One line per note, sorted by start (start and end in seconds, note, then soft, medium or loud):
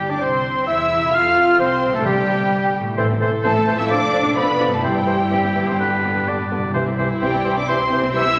0.00 0.95 C3 soft
0.00 0.99 C4 soft
0.00 1.11 E4 soft
0.00 0.12 G4 soft
0.00 1.14 G4 soft
0.08 0.20 D2 medium
0.08 0.20 D4 soft
0.08 0.20 D4 medium
0.08 0.21 D4 soft
0.08 0.21 D5 soft
0.08 0.22 D5 medium
0.08 0.21 D5 medium
0.08 0.20 D6 soft
0.08 0.21 D6 medium
0.20 0.66 C2 soft
0.20 0.66 C4 soft
0.20 0.67 C4 medium
0.20 0.67 C4 soft
0.20 0.68 C4 medium
0.20 0.66 C5 soft
0.20 0.69 C6 soft
0.20 0.68 C6 medium
0.66 1.13 E2 medium
0.66 1.16 E4 medium
0.66 1.14 E4 medium
0.66 1.13 E5 medium
0.66 1.15 E5 medium
0.66 1.12 E6 medium
0.66 1.13 E6 medium
0.96 1.86 C3 soft
1.00 2.01 C4 soft
1.05 2.03 F4 soft
1.09 2.05 A4 soft
1.09 1.61 F6 medium
1.14 1.59 F2 medium
1.14 1.59 F4 medium
1.14 1.60 F4 medium
1.14 1.59 F4 medium
1.14 1.58 F5 medium
1.14 1.60 F5 medium
1.14 1.60 F6 medium
1.59 1.94 C2 medium
1.59 1.94 C4 medium
1.59 1.95 C4 medium
1.59 1.94 C4 medium
1.59 1.93 C5 medium
1.59 1.95 C5 medium
1.59 1.93 C5 medium
1.59 1.93 C6 medium
1.88 2.91 C3 medium
1.92 2.05 A1 medium
1.92 2.04 A3 medium
1.92 2.05 A3 medium
1.92 2.06 A3 medium
1.92 2.93 B3 soft
1.92 2.07 A4 medium
1.92 2.05 A4 medium
1.92 2.05 A5 medium
1.97 2.95 D4 soft
2.01 2.74 G1 medium
2.01 2.73 G3 medium
2.01 2.98 G4 soft
2.01 2.73 G4 medium
2.01 2.73 G5 medium
2.05 2.71 C3 medium
2.05 2.73 G3 medium
2.05 2.74 G3 medium
2.05 2.75 G3 medium
2.05 2.75 G4 medium
2.05 2.74 G4 medium
2.05 2.74 G5 medium
2.80 3.83 A2 medium
2.84 3.76 A3 medium
2.89 3.88 E4 soft
2.93 3.02 A1 medium
2.93 3.90 C5 medium
2.93 3.08 C5 medium
2.98 3.08 E3 medium
2.98 3.02 C4 medium
2.98 3.08 A4 medium
2.98 4.80 A4 medium
3.09 3.14 A1 medium
3.09 3.15 C4 medium
3.20 3.25 A1 medium
3.20 3.31 E3 medium
3.20 3.26 A3 medium
3.20 3.30 A4 medium
3.20 3.32 C5 medium
3.43 3.48 A1 medium
3.43 3.55 E3 medium
3.43 3.76 A3 medium
3.43 3.49 C4 medium
3.43 3.54 A4 medium
3.43 3.76 A4 medium
3.43 3.54 C5 medium
3.43 3.76 A5 medium
3.55 3.60 A1 medium
3.55 3.60 C4 medium
3.66 3.72 A1 medium
3.66 3.77 E3 medium
3.66 3.71 A3 medium
3.66 3.77 A4 medium
3.66 3.78 C5 medium
3.72 4.77 F2 medium
3.77 3.83 A1 medium
3.77 4.79 A3 medium
3.77 3.82 C4 medium
3.77 3.90 E4 medium
3.77 3.91 E4 medium
3.77 3.90 E5 medium
3.77 3.84 E6 medium
3.77 3.90 E6 medium
3.81 4.82 F4 medium
3.86 4.84 A4 medium
3.90 4.01 F3 medium
3.90 4.37 D4 medium
3.90 4.36 D4 medium
3.90 4.01 A4 medium
3.90 4.01 D5 medium
3.90 4.36 D5 medium
3.90 4.36 D6 loud
3.90 4.38 D6 medium
4.01 4.06 F1 medium
4.01 4.06 A3 medium
4.12 4.17 F1 medium
4.12 4.23 F3 medium
4.12 4.17 D4 medium
4.12 4.23 A4 medium
4.12 4.23 D5 medium
4.24 4.29 F1 medium
4.24 4.29 D4 medium
4.36 4.41 F1 medium
4.36 4.47 F3 medium
4.36 4.41 A3 medium
4.36 4.72 B3 medium
4.36 4.73 B3 medium
4.36 4.47 A4 medium
4.36 4.72 B4 medium
4.36 4.47 D5 medium
4.36 4.71 B5 medium
4.36 4.72 B5 medium
4.47 4.53 F1 medium
4.47 4.52 D4 medium
4.59 4.65 F1 soft
4.59 4.70 F3 medium
4.59 4.64 D4 medium
4.59 4.71 A4 soft
4.59 4.71 D5 medium
4.66 5.61 G2 medium
4.70 4.77 F1 soft
4.70 4.84 A3 soft
4.70 4.77 A3 medium
4.70 4.85 A3 soft
4.70 5.75 C4 soft
4.70 4.78 A4 soft
4.70 4.82 A5 medium
4.70 4.84 A5 medium
4.75 5.77 E4 soft
4.79 4.93 E3 medium
4.79 5.74 G4 soft
4.79 6.24 G5 medium
4.84 4.89 G1 medium
4.84 5.52 G2 medium
4.84 6.25 G3 medium
4.84 6.26 G3 medium
4.84 4.89 C4 medium
4.84 5.78 E4 medium
4.84 4.95 G4 medium
4.84 6.25 G4 medium
4.84 4.95 C5 medium
4.84 6.25 G5 medium
4.96 5.01 G1 medium
4.96 5.01 C4 soft
5.06 5.13 G1 soft
5.06 5.17 E3 soft
5.06 5.13 G3 medium
5.06 5.19 G4 medium
5.06 5.18 C5 soft
5.31 5.36 G1 medium
5.31 5.42 E3 soft
5.31 5.37 C4 medium
5.31 5.69 G4 medium
5.31 5.43 G4 soft
5.43 5.48 G1 soft
5.43 5.49 C4 soft
5.56 5.60 G1 soft
5.56 5.66 E3 soft
5.56 5.61 G3 soft
5.56 5.67 G4 soft
5.62 6.68 G2 soft
5.66 5.73 G1 medium
5.66 6.70 B3 soft
5.66 5.73 C4 medium
5.66 5.79 C5 medium
5.71 6.72 D4 soft
5.75 6.56 D4 medium
5.75 6.70 G4 soft
5.75 5.90 G4 soft
5.80 5.91 D3 soft
5.80 6.29 B4 medium
5.92 5.97 G1 soft
5.92 5.96 G3 soft
6.03 6.08 G1 medium
6.03 6.15 D3 medium
6.03 6.08 B3 medium
6.03 6.14 G4 soft
6.15 6.21 G1 soft
6.15 6.20 B3 medium
6.27 6.33 G1 soft
6.27 6.39 D3 medium
6.27 6.32 G3 medium
6.27 6.38 G4 soft
6.27 6.73 D5 medium
6.39 6.44 G1 medium
6.39 6.44 B3 medium
6.51 6.56 G1 soft
6.51 6.62 D3 soft
6.51 6.56 B3 soft
6.51 6.62 G4 soft
6.57 8.39 C3 medium
6.62 6.68 G1 soft
6.62 6.67 G3 soft
6.62 8.39 C4 soft
6.66 8.39 E4 soft
6.71 7.41 C3 medium
6.71 6.79 C4 medium
6.71 8.39 E4 medium
6.71 8.39 G4 soft
6.71 6.85 G4 medium
6.71 6.85 C5 medium
6.75 6.80 C2 medium
6.75 6.86 E3 medium
6.86 6.91 C2 medium
6.86 6.91 C4 soft
6.97 7.03 C2 medium
6.97 7.09 E3 medium
6.97 7.02 G3 soft
6.97 7.09 G4 medium
6.97 7.08 C5 medium
7.21 7.26 C2 medium
7.21 7.33 E3 medium
7.21 7.54 G3 medium
7.21 7.55 G3 medium
7.21 7.26 C4 medium
7.21 7.54 G4 medium
7.21 7.32 G4 medium
7.21 7.32 C5 medium
7.21 7.58 G5 medium
7.21 7.54 G5 medium
7.33 7.38 C2 medium
7.33 7.38 C4 soft
7.44 7.49 C2 medium
7.44 7.56 E3 medium
7.44 7.49 G3 medium
7.44 7.56 G4 medium
7.44 7.55 C5 medium
7.56 7.61 C2 medium
7.56 7.61 C4 medium
7.56 7.68 D4 medium
7.56 7.61 D5 medium
7.56 7.67 D6 medium
7.56 7.68 D6 medium
7.66 7.79 E3 medium
7.66 8.12 C4 medium
7.66 8.13 C4 medium
7.66 7.78 G4 medium
7.66 8.13 C5 medium
7.66 7.78 C5 medium
7.66 8.14 C6 medium
7.66 8.13 C6 medium
7.79 7.84 C2 medium
7.79 7.84 G3 medium
7.90 7.96 C2 medium
7.90 8.02 E3 medium
7.90 7.95 C4 medium
7.90 8.02 G4 medium
7.90 8.02 C5 medium
8.02 8.08 C2 medium
8.02 8.07 C4 medium
8.13 8.19 C2 medium
8.13 8.25 E3 medium
8.13 8.18 G3 medium
8.13 8.39 E4 medium
8.13 8.25 G4 medium
8.13 8.25 C5 medium
8.13 8.39 E5 medium
8.13 8.39 E6 loud
8.13 8.39 E6 medium
8.26 8.30 C2 medium
8.26 8.30 C4 medium